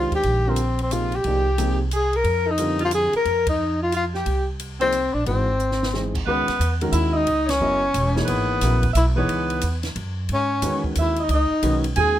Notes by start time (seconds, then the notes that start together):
Already playing: D#3 G#3 D4 F4 G4 C5
0.12 G4, muted upright bass stroke, kick, ride
0.23 A#1, ride
0.47 D3 G3 C4 F4 A#4
0.56 hi-hat pedal, ride
0.79 C4, ride
0.91 C3 F3 A#3 D#4 F4 G#4, hi-hat pedal, ride
1.12 G4, ride
1.16 G4
1.24 C2 F3 A#3 D#4 G#4 D5, ride
1.58 C3 F3 A#3 D#4 G#4, hi-hat pedal, ride
1.91 G#4, hi-hat pedal, ride
1.96 G#4
2.13 A#4, ride
2.24 F2, ride
2.47 D#4
2.51 D#4
2.58 D3 G3 C4 F4 A#4, hi-hat pedal, ride
2.79 F4, ride
2.85 F4
2.91 G#4, hi-hat pedal, ride
2.95 G#4
3.13 A#4, muted upright bass stroke, ride
3.25 F2, ride
3.47 D#4, kick, ride
3.82 F4
3.92 F4, hi-hat pedal, ride
4.14 G4, snare
4.26 C2, ride
4.59 hi-hat pedal, ride
4.80 F3 A#3 C4 D#4 G#4 D5, ride
4.92 hi-hat pedal, ride
5.14 A#1 D4
5.25 G#1 E3 G#3 C4 D#4 F#4, ride
5.59 hi-hat pedal
5.71 snare
5.83 snare
5.93 E3 G#3 C4 D#4 G#4, snare
6.15 kick, crash
6.26 C#2 D#3 G#3 B3 C#4 F#4 B4
6.48 muted upright bass stroke, snare, ride
6.60 E2, hi-hat pedal, ride
6.81 D#3 G#3 C#4 F#4 A#4, ride
6.92 D#2 E4 E5, hi-hat pedal, ride
7.13 D#4 D#5
7.27 C#2, ride
7.46 C#4 C#5, snare, ride
7.61 F#1 F#3 B3 E4 A#4 D#5
7.94 E1, hi-hat pedal, ride
8.15 E3 A#3 D#4 G#4 C#5, snare
8.25 G#1 B3 B4, ride
8.61 A#1 C#3 F#3 B3 E4 A#4, snare, hi-hat pedal, ride
8.83 kick, ride
8.93 B1 E4 E5, hi-hat pedal, ride
9.16 E3 B3 D#4 G#4 B4 C#5
9.29 ride
9.50 ride
9.61 E2, hi-hat pedal, ride
9.83 snare, ride
9.96 F#2, ride
10.29 G#2, ride
10.33 C#4 C#5
10.62 E2 D#3 G#3 C#4 F#4 B4, hi-hat pedal, ride
10.84 kick
10.95 D#2 E5, hi-hat pedal, ride
11.00 E4
11.16 D#5, ride
11.24 D#4
11.29 C#2 D#5, ride
11.33 D#4
11.63 B1 D#3 G#3 C#4 F#4 B4, hi-hat pedal, ride
11.84 ride
11.96 D#2 D#3 G#3 C#4 F#4 G#4 G#5, ride